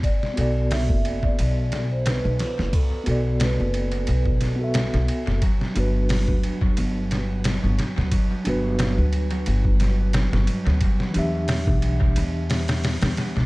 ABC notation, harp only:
X:1
M:4/4
L:1/16
Q:"Swing 16ths" 1/4=89
K:G
V:1 name="Harp" clef=bass
z16 | z16 | F, G,4 B, z F,3 G, B,2 F, G, B, | F, G,4 B, z F,3 G, B,2 F, G, B, |
G, B,4 D z G,3 B, D2 G, B, D |]